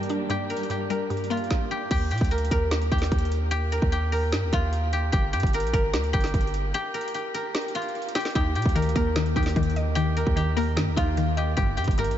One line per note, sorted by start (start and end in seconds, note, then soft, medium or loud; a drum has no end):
0.00 0.28 G2 medium
0.00 1.48 G2 medium
0.00 0.30 G3 medium
0.00 1.48 G3 medium
0.00 0.70 A#3 medium
0.00 1.48 D4 medium
0.00 0.61 F4 medium
0.00 0.30 G4 medium
0.00 0.50 A#4 medium
0.00 1.47 A#4 medium
0.00 closed hi-hat medium
0.10 1.10 D4 medium
0.10 closed hi-hat medium
0.29 0.68 G2 medium
0.29 0.70 G4 loud
0.29 closed hi-hat medium
0.50 0.90 A#4 medium
0.50 closed hi-hat medium
0.57 closed hi-hat medium
0.63 closed hi-hat medium
0.70 1.09 G2 medium
0.70 1.71 G4 medium
0.70 closed hi-hat medium
0.90 1.91 G3 medium
0.90 2.31 A#4 medium
0.90 closed hi-hat medium
1.10 1.91 G2 medium
1.10 closed hi-hat medium
1.17 closed hi-hat medium
1.24 closed hi-hat medium
1.30 1.91 A#3 medium
1.30 3.83 F4 medium
1.30 closed hi-hat medium
1.37 closed hi-hat soft
1.44 closed hi-hat soft
1.51 kick loud
1.51 snare medium
1.71 1.91 G4 medium
1.91 2.13 D#2 loud
1.91 2.11 G4 loud
1.91 kick loud
1.91 closed hi-hat medium
1.91 crash medium
2.11 2.21 A#2 loud
2.11 2.91 G4 medium
2.11 closed hi-hat medium
2.18 2.50 D2 loud
2.18 kick medium
2.18 closed hi-hat medium
2.24 closed hi-hat medium
2.31 2.51 A#4 medium
2.31 closed hi-hat medium
2.38 closed hi-hat medium
2.45 closed hi-hat medium
2.51 2.90 D#2 loud
2.51 3.72 A#4 medium
2.51 kick loud
2.51 closed hi-hat medium
2.71 snare loud
2.71 closed hi-hat medium
2.82 closed hi-hat medium
2.92 3.11 D#2 loud
2.92 3.51 G4 medium
2.92 kick medium
2.92 closed hi-hat soft
2.98 snare medium
2.98 closed hi-hat medium
3.05 closed hi-hat medium
3.12 3.79 D#2 loud
3.12 kick medium
3.12 closed hi-hat medium
3.18 closed hi-hat medium
3.25 closed hi-hat medium
3.32 closed hi-hat medium
3.51 3.92 G4 loud
3.51 closed hi-hat medium
3.72 4.12 A#4 medium
3.72 closed hi-hat medium
3.82 4.34 D#2 loud
3.82 kick medium
3.92 4.92 G4 medium
3.92 closed hi-hat medium
4.12 5.54 A#4 medium
4.12 open hi-hat medium
4.32 4.44 G2 loud
4.32 snare loud
4.32 closed hi-hat medium
4.43 4.52 D#2 loud
4.53 5.11 D#2 loud
4.53 7.05 F4 medium
4.53 kick medium
4.53 closed hi-hat medium
4.73 closed hi-hat medium
4.93 5.12 G4 medium
4.93 closed hi-hat medium
5.12 5.35 G1 loud
5.12 5.33 G4 medium
5.12 kick loud
5.12 closed hi-hat medium
5.33 5.43 G2 loud
5.33 6.13 G4 medium
5.33 closed hi-hat medium
5.40 5.65 G1 loud
5.40 kick loud
5.40 closed hi-hat medium
5.47 closed hi-hat medium
5.53 5.73 A#4 medium
5.53 closed hi-hat medium
5.60 5.73 A#1 loud
5.60 closed hi-hat medium
5.67 closed hi-hat medium
5.73 5.95 G1 loud
5.73 6.94 A#4 medium
5.73 kick loud
5.73 closed hi-hat medium
5.94 6.13 D2 loud
5.94 snare loud
5.94 closed hi-hat medium
6.04 closed hi-hat medium
6.13 6.33 G1 loud
6.13 6.74 G4 medium
6.13 kick medium
6.13 closed hi-hat soft
6.20 snare medium
6.20 closed hi-hat medium
6.27 closed hi-hat medium
6.34 6.73 G1 loud
6.34 kick medium
6.34 closed hi-hat medium
6.41 closed hi-hat medium
6.47 closed hi-hat medium
6.54 closed hi-hat medium
6.74 7.14 G4 loud
6.74 closed hi-hat medium
6.94 7.34 A#4 medium
6.94 closed hi-hat medium
7.01 closed hi-hat medium
7.08 closed hi-hat medium
7.14 8.15 G4 medium
7.14 closed hi-hat medium
7.34 8.75 A#4 medium
7.34 closed hi-hat medium
7.55 snare loud
7.55 closed hi-hat medium
7.61 closed hi-hat medium
7.68 closed hi-hat medium
7.75 10.27 F4 medium
7.75 closed hi-hat medium
7.82 closed hi-hat medium
7.88 closed hi-hat soft
7.95 closed hi-hat soft
8.02 closed hi-hat medium
8.09 closed hi-hat medium
8.15 8.35 G4 medium
8.15 snare medium
8.15 closed hi-hat medium
8.20 closed hi-hat medium
8.25 snare medium
8.25 closed hi-hat medium
8.30 closed hi-hat medium
8.35 8.57 D#2 loud
8.35 9.35 D#4 loud
8.35 8.55 G4 loud
8.35 kick loud
8.35 closed hi-hat medium
8.55 8.65 A#2 loud
8.55 9.36 G4 medium
8.55 closed hi-hat medium
8.62 8.94 D2 loud
8.62 kick medium
8.62 closed hi-hat medium
8.69 closed hi-hat medium
8.75 9.15 D#3 medium
8.75 8.95 A#4 medium
8.75 closed hi-hat medium
8.82 closed hi-hat medium
8.89 closed hi-hat medium
8.95 9.34 D#2 loud
8.95 9.96 A#3 medium
8.95 10.16 A#4 medium
8.95 kick loud
8.95 closed hi-hat medium
9.16 9.56 D#3 medium
9.16 snare loud
9.16 closed hi-hat medium
9.26 closed hi-hat medium
9.36 9.55 D#2 loud
9.36 10.37 D#4 medium
9.36 9.95 G4 medium
9.36 kick medium
9.36 closed hi-hat soft
9.43 snare medium
9.43 closed hi-hat medium
9.49 closed hi-hat medium
9.56 10.24 D#2 loud
9.56 9.95 D#3 medium
9.56 kick medium
9.56 closed hi-hat medium
9.63 closed hi-hat medium
9.70 closed hi-hat medium
9.76 10.77 D#5 medium
9.76 closed hi-hat medium
9.95 10.35 D#3 loud
9.95 10.36 G4 loud
9.95 closed hi-hat medium
10.17 10.56 A#4 medium
10.17 closed hi-hat medium
10.27 10.79 D#2 loud
10.27 kick medium
10.36 10.75 D#3 medium
10.36 11.37 G4 medium
10.36 closed hi-hat medium
10.56 11.57 A#3 medium
10.56 11.98 A#4 medium
10.56 open hi-hat medium
10.76 10.89 G2 loud
10.76 11.16 D#3 medium
10.76 snare loud
10.76 closed hi-hat medium
10.87 10.97 D#2 loud
10.96 11.55 D#2 loud
10.96 11.57 D#4 medium
10.96 12.18 F4 medium
10.96 kick medium
10.96 closed hi-hat medium
11.17 11.58 D#3 medium
11.17 closed hi-hat medium
11.37 11.56 G4 medium
11.37 11.57 D#5 medium
11.37 closed hi-hat medium
11.57 11.79 G1 loud
11.57 11.97 G2 medium
11.57 11.77 G4 medium
11.57 kick loud
11.57 closed hi-hat medium
11.77 11.87 G2 loud
11.77 12.18 G4 medium
11.77 closed hi-hat medium
11.84 12.09 G1 loud
11.84 kick medium
11.84 closed hi-hat medium
11.91 closed hi-hat medium
11.98 12.18 G2 medium
11.98 12.17 A#4 medium
11.98 closed hi-hat medium
12.04 12.17 A#1 loud
12.04 closed hi-hat medium
12.11 closed hi-hat medium